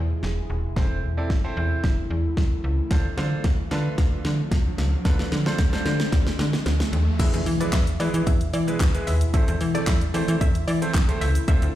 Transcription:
Already playing: E2 B2 G#3 E4 G#4, riser
0.23 E1, snare
0.50 D#1
0.76 E1 C3 E3 A3 C4 E4 A4 C5, kick, snare
1.03 E2
1.17 C4 E4 A4 D5
1.30 E1, kick, snare
1.44 C4 E4 A4 C5
1.57 E2
1.84 E1, kick, snare
2.10 E2
2.37 C2, kick, snare
2.64 C#2
2.90 D2 C3 F3 D4 F4 A4 C5, kick, snare, closed hi-hat
3.17 D3 D4 F4 A4 C5, snare, closed hi-hat
3.44 D2, kick, snare, closed hi-hat
3.71 D3 D4 F4 A4 B4, snare, closed hi-hat
3.98 D2, kick, snare, closed hi-hat
4.25 D3, snare, closed hi-hat
4.51 C2, kick, snare, closed hi-hat
4.78 C#2, snare, closed hi-hat
5.05 D2 D4 F4 A4 B4, kick, snare, closed hi-hat
5.19 snare
5.32 D3, snare, closed hi-hat
5.46 D4 F4 A4 C5, snare
5.58 D2, kick, snare, closed hi-hat
5.73 D4 F4 A4 C5, snare
5.86 D3, snare, closed hi-hat
6.00 snare
6.12 D2, kick, snare, closed hi-hat
6.27 snare
6.39 D3, snare, closed hi-hat
6.53 snare
6.66 D2, snare, closed hi-hat
6.80 snare
6.93 D#2, closed hi-hat
7.19 E2 B2 E3 G#3 B3 E4 G#4 B4 E5, kick, closed hi-hat, crash, impact, shaker
7.34 E2, closed hi-hat, shaker
7.46 E3, open hi-hat, shaker
7.60 G#3 B3 E4 G#4 B4 D5, closed hi-hat, shaker
7.73 E2 E5, kick, snare, clap, closed hi-hat, shaker
7.87 closed hi-hat, shaker
8.00 E3 G#3 B3 E4 G#4 B4 D5, open hi-hat, shaker
8.14 E3, closed hi-hat, shaker
8.27 E2 E5, kick, closed hi-hat, shaker
8.41 closed hi-hat, shaker
8.53 E3 D5, open hi-hat, shaker
8.67 G#3 B3 E4 G#4 B4, closed hi-hat, shaker
8.80 D2, kick, snare, clap, closed hi-hat, shaker
8.94 G#3 B3 E4 G#4 B4, closed hi-hat, shaker
9.07 D#2 E5, open hi-hat, shaker
9.21 closed hi-hat, shaker
9.33 E2 C3 A3 C4 E4 A4 C5 E5, kick, closed hi-hat, shaker
9.48 E2, closed hi-hat, shaker
9.61 E3, open hi-hat, shaker
9.74 A3 C4 E4 A4 D5, closed hi-hat, shaker
9.87 E2 E5, kick, snare, clap, closed hi-hat, shaker
10.01 closed hi-hat, shaker
10.14 E3 A3 C4 E4 A4 C5 D5, open hi-hat, shaker
10.28 E3, closed hi-hat, shaker
10.41 E2 E5, kick, closed hi-hat, shaker
10.55 closed hi-hat, shaker
10.68 E3 D5, open hi-hat, shaker
10.82 A3 C4 E4 A4 C5, closed hi-hat, shaker
10.94 C2, kick, snare, clap, closed hi-hat, shaker
11.08 A3 C4 E4 A4 C5, closed hi-hat, shaker
11.21 C#2 E5, open hi-hat, shaker
11.35 closed hi-hat, shaker
11.48 D2 C4 D4 F4 A4 C5 E5, kick, closed hi-hat, shaker
11.62 D2, closed hi-hat, shaker

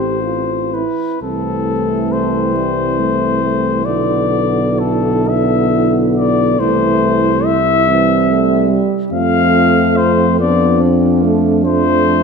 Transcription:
Already playing: A1 C4 G4 C5
0.20 F4
0.74 E4 B4
1.22 C2 E3 A3 C4 A4
2.12 C5
2.56 G3
2.99 A3
3.43 A3
3.85 B1 D3 B3 E4 D5
4.80 A4
5.29 B3 E5
6.17 D5
6.59 C2 E3 A3 E4 C5
7.45 E5
7.87 E3 G3 C4
8.30 A3
8.71 G3
9.11 F2 F3 A3 C4 F5
9.97 C5
10.39 F3 B3 D4 D5
10.81 C4
11.23 A3
11.64 F3 A3 C5

